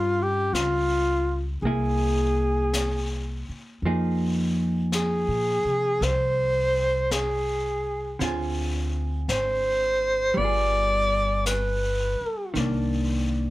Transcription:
Already playing: upright bass G2, hollow-body jazz guitar G3 C#4 F4 A#4, alto saxophone F4
0.22 alto saxophone G4
0.53 upright bass C#2, alto saxophone F4, brush sweep, snare, hi-hat pedal
1.62 upright bass C2, hollow-body jazz guitar A#3, alto saxophone G#4, brush sweep
1.67 hollow-body jazz guitar E4 G#4
2.73 brush sweep, snare, hi-hat pedal
3.49 muted upright bass stroke
3.82 upright bass F2, hollow-body jazz guitar F3, brush sweep
3.86 hollow-body jazz guitar A#3 D#4 G#4
4.92 alto saxophone G#4, brush sweep, snare, hi-hat pedal
5.28 upright bass A#2
5.65 upright bass C3
6.01 upright bass C2, alto saxophone C5, brush sweep, snare
7.11 alto saxophone G#4, brush sweep, snare, hi-hat pedal
8.19 upright bass D2, hollow-body jazz guitar D3 C4 F4, brush sweep, snare
8.24 hollow-body jazz guitar G#4
9.28 upright bass G#1, alto saxophone C5, brush sweep, snare, hi-hat pedal
10.34 upright bass G1, hollow-body jazz guitar G3 B3, alto saxophone D5, brush sweep
10.42 hollow-body jazz guitar F4 G#4
11.46 alto saxophone B4, brush sweep, snare, hi-hat pedal
12.21 muted upright bass stroke
12.54 upright bass C2, hollow-body jazz guitar D#3 A#3, brush sweep, snare
12.59 hollow-body jazz guitar D4

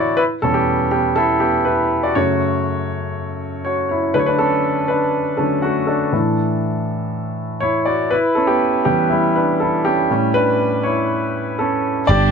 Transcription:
Already playing: grand piano A2 D3 E3 E4 F#4 C#5 D5
0.17 grand piano E4 B4
0.42 grand piano E2 B2 G3 C#4 A4
0.54 grand piano B3 G4
0.91 grand piano B3 G4
1.16 grand piano E4 A4
1.40 grand piano B3 G4
1.65 grand piano E4 B4
2.03 grand piano F#4 D5
2.15 grand piano F#2 C#3 A3 F#4 C#5
3.65 grand piano F#4 C#5
3.89 grand piano E4 C#5
4.14 grand piano D3 F#3 A3 D4 B4
4.19 grand piano C#5
4.26 grand piano D4 B4
4.39 grand piano C#4 A4
4.88 grand piano D4 B4
5.37 grand piano D3 F#3 A3 C#4 A4
5.62 grand piano A3 F#4
5.87 grand piano D4 A4
6.12 grand piano A2 E3 D4
7.60 grand piano E4 C#5
7.85 grand piano F#4 D5
8.11 grand piano E4 B4
8.35 grand piano C#4 A4
8.47 grand piano B3 G4
8.85 grand piano E3 G3 B3 G4
9.10 grand piano G3 E4
9.35 grand piano D4 B4
9.60 grand piano E4 A4
9.85 grand piano C#4 G4
10.10 grand piano A2 G3 C#4
10.34 grand piano D4 B4
10.83 grand piano E4 C#5
11.59 grand piano C#4 A4
12.07 picked electric bass G1, string section G3 B3 D4, grand piano G4 D5

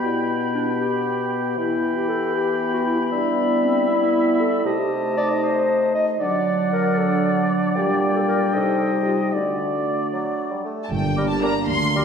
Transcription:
Already playing: french horn section B3 G4, oboe G5, flute B5
0.01 bassoon B2, clarinet E4
0.54 clarinet D4
0.80 clarinet G4
1.57 bassoon E3, french horn section B3 G4, clarinet E4, oboe G5, flute B5
1.97 clarinet G4
2.08 clarinet A4
2.36 clarinet G4
2.73 clarinet F#4
2.86 clarinet E4
3.11 bassoon G3, clarinet D4, french horn section E4, oboe E5
3.65 clarinet C4
3.89 clarinet E4
4.41 clarinet A4
4.64 bassoon C3, french horn section A3 D#4, clarinet G4, oboe D#5, flute A5
4.73 clarinet A4
4.79 clarinet G4
5.17 clarinet D5
5.43 clarinet C5
5.95 clarinet D#5
6.19 bassoon D3, french horn section F#3 D4, clarinet D5, oboe D5, flute F#5
6.72 clarinet A#4
6.97 clarinet A4
7.76 bassoon A#2, french horn section G3, clarinet G4, flute G5
8.16 clarinet A4
8.28 clarinet A#4
8.53 bassoon C3, french horn section D#4, clarinet A4, oboe D#5
8.94 clarinet G4
9.07 clarinet F4
9.33 bassoon D3, french horn section A3 D4, clarinet F#4, flute D5, oboe D5
10.13 bassoon F#3
10.52 bassoon G3
10.65 bassoon A3
10.84 violin section A5
10.90 double bass section G1, tuba G1, cello section G2, french horn section A#3 D4, violin section G5
11.17 bassoon G3, clarinet G4, oboe A#4, flute D6
11.30 violin section A5
11.42 bassoon G3, viola section A#3 D4, clarinet G4, violin section G4 D5 A#5, oboe A#4, flute D6
11.68 cello section D2, double bass section D2, tuba D2, violin section C6
11.95 bassoon G3, clarinet G4, oboe A#4, flute D6

